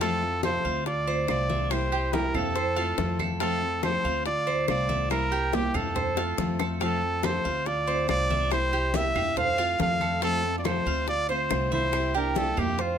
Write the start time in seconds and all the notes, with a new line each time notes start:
Already playing: F2
0.00 C3 F3 A3 C4 F4 A4, high bongo, high conga
0.22 A3 C4 F4, high conga
0.43 C3 F3 A3 C4 F4 A4 C5, high bongo, high conga, claves
0.64 D2 A3 C4 F4 F5, high conga
0.86 F4 D5, muted steel-string acoustic guitar stroke, high bongo, high conga
1.07 A3 C4 F4 C5, high conga
1.28 C2 D3 A3 C4 F4 D5, high bongo, low bongo, claves
1.49 E5, high conga
1.70 C3 G3 A#3 E4 G4 C5, high bongo, high conga, claves
1.92 A#3 E4 G4, high conga
2.13 C3 G3 A#3 E4 G4 A#4, high bongo, high conga
2.34 F2 A#3 C4 E4 G4 A4 F5, high bongo, high conga, low conga, claves
2.55 C5, muted steel-string acoustic guitar stroke, high bongo, high conga
2.76 A3 C4 F4, high bongo, high conga
2.98 F2 C3 F3 A3 C4 F4, high bongo, low bongo, high conga
3.19 A4, high bongo, high conga, claves
3.40 C3 F3 A3 C4 F4 A4, high bongo, high conga
3.61 A3 C4 F4, high conga
3.83 C3 F3 A3 C4 F4 A4 C5, high bongo, high conga, claves
4.04 D2 A3 C4 F4 F5, high conga
4.25 F4 D5, muted steel-string acoustic guitar stroke, high bongo, high conga
4.46 A3 C4 F4 C5, high conga
4.68 C2 D3 A3 C4 F4 D5, high bongo, low bongo, high conga, claves
4.89 E5, high conga
5.10 C3 G3 A#3 E4 G4 A#4, high bongo, high conga, claves
5.31 A#3 E4 G4, high conga
5.52 C3 G3 A#3 E4 G4, high bongo, high conga
5.74 F2 A#3 C4 E4 G4 A4 F5, high bongo, high conga, low conga, claves
5.95 C5, muted steel-string acoustic guitar stroke, high bongo, high conga, low conga
6.16 A3 C4 F4, high bongo, high conga
6.37 F2 C3 F3 A3 C4 F4, low bongo, high conga
6.59 A4, low bongo, claves
6.80 C3 F3 A3 C4 F4 A4, high bongo, high conga
7.02 C4, high conga
7.22 C3 F3 A3 C4 F4 A4 C5, high bongo, high conga, claves
7.44 D2 A3 C4 F4 F5, high conga
7.66 F4 D5, muted steel-string acoustic guitar stroke, high bongo, high conga
7.87 A3 C4 F4 C5, high conga
8.08 C2 D3 A3 C4 F4 D5, high bongo, low bongo, claves
8.30 E5, high conga
8.51 C3 G3 A#3 E4 G4 C5, high bongo, high conga, claves
8.72 A#3 E4 G4, high conga
8.94 C3 G3 A#3 E4 G4 E5, high bongo, high conga
9.15 F2 A#3 E4 G4 F5, high bongo, high conga, low conga, claves
9.36 A4 C5 F5, muted steel-string acoustic guitar stroke, high bongo, high conga, low conga
9.58 A3 C4 F4, high bongo, high conga
9.78 F2 C3 F3 A3 C4 F4 A4 F5, high bongo, low bongo, high conga
10.01 A4, high bongo, high conga, claves
10.22 C3 F3 A3 C4 F4 A4, high bongo, high conga
10.43 A3 C4 F4, high conga
10.58 F4 D5
10.64 C3 F3 A3 C4 F4 A4 C5, high bongo, high conga, claves
10.86 D2 A3 C4 F4 F5, high conga
11.07 F4 D5, muted steel-string acoustic guitar stroke, high bongo, high conga
11.28 A3 C4 F4 C5, high conga
11.49 C2 D3 A3 C4 F4, high bongo, low bongo, high conga, claves
11.72 E4 C5 E5, high conga
11.92 C3 G3 A#3 E4 G4, high bongo, high conga, claves
12.14 A#3 D4 E4 G4 A#4, high conga
12.35 C3 G3 A#3 C4 E4 G4 A4, high bongo, high conga
12.56 F2 A#3 E4 G4 F5, high bongo, high conga, low conga, claves
12.78 A3 F4 C5, muted steel-string acoustic guitar stroke, high bongo, high conga